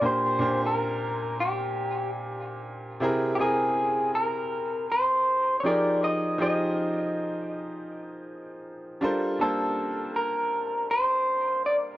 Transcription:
0.01 A#2 A#3 D4 G4 C5
0.06 C5
0.39 A#2 A#3 D4 G4 C5
0.66 A#4
1.40 G4
3.00 C3 C4 E4 G#4 A#4
3.35 C3 C4 G4
3.40 E4 G#4 A#4
4.15 A#4
4.92 C5
5.60 F3 C#5
5.64 D#4 G4 G#4 A#4 D5
6.04 D#5
6.38 F3 D#4 G4 G#4 C5 D#5
9.01 G3 D4 F4 A4 A#4 C5
9.39 G3 A#3 D4 F4 A4 C5 A5
10.16 A#4
10.91 C5
11.66 D5

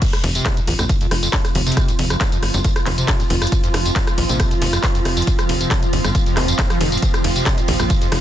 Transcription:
0.02 F3 C4 F4, kick, closed hi-hat, crash, ride, tambourine
0.13 cross-stick, closed hi-hat, tambourine
0.22 F1 D#2 F4, snare, open hi-hat, ride
0.35 C3 C6, closed hi-hat, tambourine
0.45 kick, cross-stick, snare, clap, closed hi-hat, ride
0.57 F2, closed hi-hat, ride, tambourine
0.67 A#1 D#2, open hi-hat, ride
0.72 F5
0.79 A#1 F2, cross-stick, closed hi-hat, tambourine
0.89 kick, closed hi-hat, ride, tambourine
1.01 F2, closed hi-hat, tambourine
1.11 F1, cross-stick, snare, open hi-hat, ride
1.23 F2, snare, closed hi-hat, tambourine
1.33 F2, kick, snare, clap, closed hi-hat, ride, tambourine
1.45 cross-stick, snare, closed hi-hat, tambourine
1.55 F1 D#2, open hi-hat, ride
1.66 C3, snare, closed hi-hat, tambourine
1.72 closed hi-hat
1.77 kick, cross-stick, closed hi-hat, ride, tambourine
1.88 F2, closed hi-hat, ride, tambourine
1.99 F1 D#2, open hi-hat, ride
2.10 F2, cross-stick, closed hi-hat, tambourine
2.21 kick, snare, clap, closed hi-hat, ride, tambourine
2.32 F2, closed hi-hat, ride, tambourine
2.43 G1, cross-stick, open hi-hat, ride
2.54 G1 F2, snare, closed hi-hat, tambourine
2.64 F2, kick, closed hi-hat, ride, tambourine
2.76 cross-stick, closed hi-hat, tambourine
2.86 F1 D#2, clap, open hi-hat, ride
2.98 C3, closed hi-hat, ride, tambourine
3.08 kick, cross-stick, snare, clap, closed hi-hat, ride, tambourine
3.20 F2, snare, closed hi-hat, tambourine
3.30 F1 D#2, open hi-hat, ride
3.42 F2, cross-stick, snare, closed hi-hat, tambourine
3.47 closed hi-hat
3.52 kick, closed hi-hat, ride, tambourine
3.64 F2, closed hi-hat, tambourine
3.74 F1, cross-stick, snare, open hi-hat, ride
3.85 F2, closed hi-hat, tambourine
3.96 F2, kick, snare, clap, closed hi-hat, ride, tambourine
4.07 cross-stick, closed hi-hat, ride, tambourine
4.18 A#1 D#2, open hi-hat, ride
4.29 A#1 C3, closed hi-hat, tambourine
4.40 kick, cross-stick, closed hi-hat, ride, tambourine
4.51 F2, closed hi-hat, tambourine
4.62 F1 D#2, snare, open hi-hat, ride
4.73 F2, cross-stick, snare, closed hi-hat, tambourine
4.83 kick, snare, clap, closed hi-hat, ride, tambourine
4.95 F2, snare, closed hi-hat, tambourine
5.05 F1, cross-stick, open hi-hat, ride
5.17 F2, snare, closed hi-hat, tambourine
5.22 closed hi-hat
5.27 F2, kick, closed hi-hat, ride, tambourine
5.39 cross-stick, closed hi-hat, ride, tambourine
5.49 F1 D#2, open hi-hat, ride
5.61 C3, closed hi-hat, tambourine
5.71 kick, cross-stick, snare, clap, closed hi-hat, ride, tambourine
5.83 F2, closed hi-hat, ride, tambourine
5.93 G1 D#2, open hi-hat, ride
6.04 G1 F2, cross-stick, snare, closed hi-hat, tambourine
6.15 kick, closed hi-hat, ride, tambourine
6.26 F2, closed hi-hat, tambourine
6.37 F1 D#2, cross-stick, clap, open hi-hat, ride
6.48 F2, closed hi-hat, ride, tambourine
6.59 F2, kick, snare, clap, closed hi-hat, ride
6.70 F3, cross-stick, snare, closed hi-hat, tambourine
6.81 F1 D#3, open hi-hat, ride
6.92 G#2, snare, closed hi-hat, tambourine
6.97 closed hi-hat
7.02 F2, kick, closed hi-hat, ride, tambourine
7.14 cross-stick, closed hi-hat, tambourine
7.24 F1 D#2, snare, open hi-hat, ride
7.36 C3, closed hi-hat, tambourine
7.46 kick, cross-stick, snare, clap, closed hi-hat, ride, tambourine
7.58 F2, closed hi-hat, ride, tambourine
7.68 A#1 D#2, open hi-hat, ride
7.80 A#1 F2, cross-stick, closed hi-hat, tambourine
7.90 kick, closed hi-hat, ride, tambourine
8.02 F2, closed hi-hat, tambourine
8.12 F1, cross-stick, snare, open hi-hat, ride

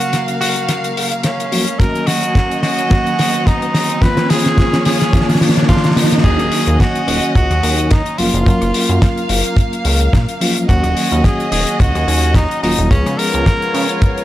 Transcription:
Already playing: C#3 F#3 A#3 C#4 F#4 F5, riser
0.01 closed hi-hat, tambourine
0.13 snare, closed hi-hat, tambourine
0.28 closed hi-hat, tambourine
0.41 F#4, cross-stick, open hi-hat, tambourine
0.56 closed hi-hat, tambourine
0.69 snare, closed hi-hat, tambourine
0.84 closed hi-hat, tambourine
0.97 open hi-hat, tambourine
1.12 closed hi-hat, tambourine
1.23 C#4, snare, closed hi-hat, tambourine
1.40 closed hi-hat
1.52 F3 F#3 A#3 C#4 F#4, open hi-hat, tambourine
1.67 closed hi-hat, tambourine
1.79 D#3 F#3 A#3 C#4 F#4 A#4 D#5, kick, snare, closed hi-hat, tambourine
1.95 closed hi-hat, tambourine
2.07 F#4, snare, open hi-hat, tambourine
2.23 closed hi-hat, tambourine
2.35 kick, snare, closed hi-hat, tambourine
2.51 closed hi-hat, tambourine
2.63 F#4, snare, open hi-hat, tambourine
2.78 closed hi-hat, tambourine
2.90 D#3 F#3 A#3 C#4 F#4, kick, snare, closed hi-hat, tambourine
3.07 closed hi-hat, tambourine
3.19 snare, open hi-hat, tambourine
3.34 closed hi-hat, tambourine
3.46 D#4, kick, snare, closed hi-hat, tambourine
3.62 closed hi-hat
3.74 snare, open hi-hat, tambourine
3.90 closed hi-hat, tambourine
4.01 D#3 F3 A#3 C#4 F4 B4 C#5, kick, snare, closed hi-hat, tambourine
4.17 snare, closed hi-hat, tambourine
4.30 G#4, snare, open hi-hat, tambourine
4.46 snare, closed hi-hat, tambourine
4.56 D#3 F3 A#3 C#4 F4, kick, snare, closed hi-hat, tambourine
4.73 snare, closed hi-hat, tambourine
4.85 G#4, snare, open hi-hat, tambourine
5.01 snare, closed hi-hat
5.12 D#3 F3 A#3 C#4 F4, kick, snare, closed hi-hat, tambourine
5.21 snare
5.29 snare, open hi-hat, tambourine
5.35 snare
5.40 D#3 F3 A#3 C#4 F4, snare, open hi-hat, tambourine
5.49 snare
5.57 snare, closed hi-hat, tambourine
5.62 snare
5.68 D#3 F3 A#3 C#4 F4, kick, snare, closed hi-hat, tambourine
5.77 snare
5.84 snare, closed hi-hat, tambourine
5.91 snare
5.96 D#3 F3 A#3 C#4 F4, snare, open hi-hat, tambourine
6.04 snare
6.12 snare, closed hi-hat
6.18 snare
6.23 D#2 D#3 F#3 A#3 C#4 F#4 G#4 D#5, kick, closed hi-hat, crash, tambourine
6.39 D#1, cross-stick, closed hi-hat, tambourine
6.52 open hi-hat, tambourine
6.67 D#2, closed hi-hat, tambourine
6.80 F#4, kick, snare, closed hi-hat, tambourine
6.95 closed hi-hat, tambourine
7.08 D#1, cross-stick, open hi-hat, tambourine
7.23 closed hi-hat, tambourine
7.35 C#2 F#4, kick, closed hi-hat
7.51 D#2, cross-stick, closed hi-hat, tambourine
7.63 D#2, open hi-hat, tambourine
7.78 closed hi-hat, tambourine
7.90 D#4, kick, snare, closed hi-hat, tambourine
8.06 closed hi-hat
8.18 F#1 F3 F#3 A#3 C#4 F4 F5, open hi-hat, tambourine
8.34 F#1, closed hi-hat, tambourine
8.46 F#2 F#3 A#3 C#4 F4 A#4, kick, closed hi-hat, tambourine
8.61 F#1, cross-stick, closed hi-hat, tambourine
8.74 open hi-hat, tambourine
8.89 F#2, closed hi-hat, tambourine
9.02 kick, snare, closed hi-hat, tambourine
9.18 closed hi-hat, tambourine
9.29 F#1, open hi-hat, tambourine
9.45 closed hi-hat, tambourine
9.57 kick, closed hi-hat, tambourine
9.73 closed hi-hat, tambourine
9.85 C#2, open hi-hat, tambourine
10.00 closed hi-hat, tambourine
10.13 A#2, kick, snare, closed hi-hat
10.29 closed hi-hat
10.41 F3 F#3 A#3 C#4 F4, open hi-hat, tambourine
10.56 closed hi-hat, tambourine
10.68 D#2 D#3 F#3 A#3 C#4 F#4 D#5, kick, closed hi-hat, tambourine
10.83 D#1, cross-stick, closed hi-hat, tambourine
10.97 open hi-hat, tambourine
11.12 D#2, closed hi-hat, tambourine
11.24 G#4, kick, snare, closed hi-hat, tambourine
11.40 closed hi-hat, tambourine
11.52 D#1 G#4, cross-stick, open hi-hat, tambourine
11.67 closed hi-hat, tambourine
11.79 C#2 F#4, kick, closed hi-hat, tambourine
11.95 D#2, cross-stick, closed hi-hat, tambourine
12.08 D#2, open hi-hat, tambourine
12.23 closed hi-hat, tambourine
12.34 D#4, kick, snare, closed hi-hat, tambourine
12.51 closed hi-hat
12.63 D#1 D#3 F#3 A#3 C#4 D#4 F4, open hi-hat, tambourine
12.78 D#1, closed hi-hat, tambourine
12.90 C#2 F3 G#3 B3 C#4 F4 G#4 C#5, kick, closed hi-hat, tambourine
13.06 C#3, cross-stick, closed hi-hat, tambourine
13.18 A#4, open hi-hat, tambourine
13.34 C#2, closed hi-hat, tambourine
13.46 kick, snare, closed hi-hat, tambourine
13.62 closed hi-hat, tambourine
13.74 C#3, open hi-hat, tambourine
13.89 closed hi-hat, tambourine
14.02 kick, closed hi-hat, tambourine
14.18 closed hi-hat, tambourine

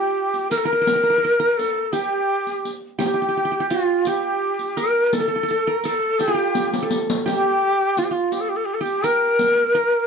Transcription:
Already playing: F4 G4
0.34 riq
0.50 A#4, riq
0.58 A4
0.65 A#4
0.73 A#4
0.81 A#4
0.87 A#4, riq
0.96 A#4
1.03 A#4
1.10 A#4
1.18 A#4
1.25 A#4
1.40 A#4
1.57 A4, riq
1.92 G4, riq
2.47 riq
2.65 riq
2.99 G4, riq
3.06 G4
3.14 G4
3.22 G4
3.28 G4
3.37 G4
3.45 G4
3.52 G4
3.60 G4
3.70 F4, riq
4.05 G4, riq
4.59 riq
4.77 A#4, riq
5.06 A#4
5.13 A4, riq
5.20 A4
5.28 A4
5.36 A4
5.43 A4
5.48 A4, riq
5.67 A#4
5.84 A4, riq
6.19 G4, riq
6.28 F4
6.34 G4
6.55 riq
6.74 riq
6.83 A4
6.91 riq
7.10 riq
7.26 G4, riq
7.97 F4, riq
8.04 G4
8.11 F4
8.32 G4, riq
8.40 A4
8.49 G4
8.56 A4
8.65 G4
8.74 A4
8.81 G4
8.86 riq
9.04 A#4, riq
9.39 riq
9.75 A#4

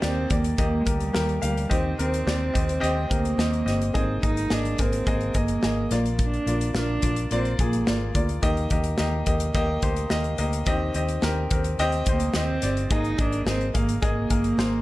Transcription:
Already playing: D#3 A#3 G4 D#5
0.02 D#2 A#3 C4 G4 D5, snare
0.30 D#2 A#3 G4 D5, kick, closed hi-hat
0.44 closed hi-hat
0.58 D#2 A#3 G4 D#5, kick, closed hi-hat
0.81 G#3
0.86 D2 G3 A#3 G4 A#4, kick, closed hi-hat
1.00 closed hi-hat
1.13 D#2 A#3 G4 A#4, snare
1.29 closed hi-hat
1.41 D2 G3 A#3 G4 F5, closed hi-hat
1.57 closed hi-hat
1.69 D#2 D#3 C4 G4 D#5, kick, closed hi-hat
1.98 D#2 C4 G4 A#4, closed hi-hat
2.14 closed hi-hat
2.27 D#2 C4 G4 D5, snare
2.53 D#2 C4 G4 D#5, kick, closed hi-hat
2.69 closed hi-hat
2.80 D#2 C4 G4 D#5, closed hi-hat
3.10 D2 A#3 C4 G4 A#4, kick, closed hi-hat
3.25 closed hi-hat
3.38 D#2 C4 G4 D#5, snare
3.53 closed hi-hat
3.66 G1 C4 G4 D#5, snare, closed hi-hat
3.82 closed hi-hat
3.94 G#1 G#2 A#3 C4 G#4 D#5, kick, closed hi-hat
4.23 G#1 A#3 D#4 G#4 D#5, kick, closed hi-hat
4.37 closed hi-hat
4.50 G#1 A#3 D4 G#4 D#5, snare
4.65 closed hi-hat
4.78 G#1 A#3 C4 G#4 A#4, kick, closed hi-hat
4.93 closed hi-hat
5.07 G#1 A#3 G#4 D#5, kick, closed hi-hat
5.21 closed hi-hat
5.34 G1 A#3 G#4 D#5, kick, closed hi-hat
5.48 closed hi-hat
5.63 G#1 A#3 G#4 D#5, snare
5.91 A#1 A#2 A#3 F4 D5, snare, closed hi-hat
6.06 closed hi-hat
6.19 D4, kick, closed hi-hat
6.34 closed hi-hat
6.46 A#1 A#3 F4 D5, closed hi-hat
6.61 closed hi-hat
6.74 A#1 A#3 D4 F4 A#4, snare
7.02 A#1 A#3 F4 D5, kick, closed hi-hat
7.16 closed hi-hat
7.31 A#1 A#3 C4 F4 D5, closed hi-hat
7.45 closed hi-hat
7.59 A#1 A#3 F4 G#4, kick, closed hi-hat
7.73 closed hi-hat
7.87 G#1 A#3 F4 D5, snare
8.15 D2 A#3 F4 D5, kick, closed hi-hat
8.29 closed hi-hat
8.42 D#2 D#3 A#3 G4 D#5, kick, closed hi-hat
8.57 closed hi-hat
8.70 D#2 A#3 G4 D#5, kick, closed hi-hat
8.84 closed hi-hat
8.98 D#2 A#3 G4 D#5, snare
9.26 D#2 A#3 G4 D#5, kick, closed hi-hat
9.40 closed hi-hat
9.55 D#2 A#3 G4 D#5, kick, closed hi-hat
9.82 D2 A#3 G4 C5, kick, closed hi-hat
9.96 closed hi-hat
10.10 D#2 A#3 G4 D#5, snare
10.24 closed hi-hat
10.38 D2 A#3 G4 D#5, closed hi-hat
10.53 closed hi-hat
10.66 D#2 D#3 C4 G4 D#5, kick, closed hi-hat
10.94 D#2 C4 G4 D#5, closed hi-hat
11.09 closed hi-hat
11.22 D#2 C4 G4 A#4, snare
11.51 D#2 C4 G4 A#4, kick, closed hi-hat
11.64 closed hi-hat
11.79 D#2 C4 G4 D#5, closed hi-hat
11.92 closed hi-hat
12.06 D2 A#3 C4 G4 C5, kick, closed hi-hat
12.20 closed hi-hat
12.34 D#2 C4 G4 D#5, snare
12.62 G1 C4 G4 D5, snare, closed hi-hat
12.77 closed hi-hat
12.90 G#1 G#2 A#3 D#4 G#4 D#5, kick, closed hi-hat
13.04 closed hi-hat
13.18 G#1 A#3 D4 G#4 D#5, kick, closed hi-hat
13.33 closed hi-hat
13.46 G#1 A#3 C4 G#4 D#5, snare
13.61 closed hi-hat
13.74 G#1 A#3 G#4 F5, kick, closed hi-hat
13.89 closed hi-hat
14.02 G#1 A#3 G#4 D#5, kick, closed hi-hat
14.30 G1 A#3 G#4 A#4, kick, closed hi-hat
14.44 closed hi-hat
14.58 G#1 A#3 G#4 C5, snare

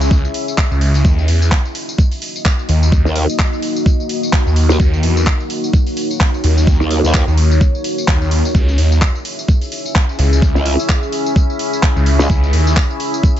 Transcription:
Already playing: C#2 C#4 E4 G#4 E5
0.01 tambourine
0.11 kick, tambourine
0.25 tambourine
0.34 open hi-hat
0.48 tambourine
0.58 kick, clap, tambourine
0.71 C#2, tambourine
0.81 open hi-hat
0.94 open hi-hat, tambourine
1.05 D#2 A#3 D#4 F#4 D#5, kick, tambourine
1.19 tambourine
1.28 E2, open hi-hat
1.42 tambourine
1.52 kick, clap, tambourine
1.65 tambourine
1.75 open hi-hat
1.89 tambourine
1.98 kick, tambourine
2.12 open hi-hat, tambourine
2.22 open hi-hat
2.36 tambourine
2.45 kick, clap, tambourine
2.59 tambourine
2.69 D#2, open hi-hat
2.83 tambourine
2.92 kick, tambourine
3.05 D#2, tambourine
3.16 open hi-hat
3.29 tambourine
3.39 kick, clap
3.53 tambourine
3.62 open hi-hat
3.76 tambourine
3.86 kick, tambourine
4.00 tambourine
4.09 open hi-hat
4.23 tambourine
4.33 kick, clap, tambourine
4.46 D#2, tambourine
4.56 open hi-hat
4.69 D#2, tambourine
4.80 D#2 C#5, kick, tambourine
4.94 tambourine
5.03 E2, open hi-hat
5.17 tambourine
5.27 kick, clap
5.40 tambourine
5.50 open hi-hat
5.64 tambourine
5.73 kick, tambourine
5.87 open hi-hat, tambourine
5.97 open hi-hat
6.11 tambourine
6.20 kick, clap, tambourine
6.34 tambourine
6.44 D#2, open hi-hat
6.58 tambourine
6.67 kick, tambourine
6.80 D#2, tambourine
6.91 open hi-hat
7.04 D#2, tambourine
7.14 kick, clap, tambourine
7.27 D#2, tambourine
7.38 open hi-hat
7.51 tambourine
7.61 kick, tambourine
7.75 tambourine
7.84 open hi-hat
7.98 tambourine
8.08 D#2, kick, clap
8.21 D#2, tambourine
8.31 open hi-hat
8.45 tambourine
8.55 C#2 C#4 E4 G#4 E5, kick, tambourine
8.69 tambourine
8.78 D#2, open hi-hat
8.92 tambourine
9.02 kick, clap, tambourine
9.15 tambourine
9.25 open hi-hat
9.39 tambourine
9.48 kick, tambourine
9.62 open hi-hat, tambourine
9.72 open hi-hat
9.86 tambourine
9.95 kick, clap, tambourine
10.09 tambourine
10.19 C#2, open hi-hat
10.33 tambourine
10.42 kick, tambourine
10.55 C#2, tambourine
10.66 open hi-hat
10.79 tambourine
10.89 kick, clap
11.03 tambourine
11.12 open hi-hat
11.26 tambourine
11.36 kick, tambourine
11.50 tambourine
11.59 open hi-hat
11.73 tambourine
11.83 kick, clap, tambourine
11.96 C#2, tambourine
12.06 open hi-hat
12.19 C#2, tambourine
12.30 C#2, kick, tambourine
12.44 tambourine
12.53 D#2, open hi-hat
12.67 tambourine
12.76 kick, clap
12.90 tambourine
13.00 open hi-hat
13.14 tambourine
13.23 kick, tambourine
13.36 open hi-hat

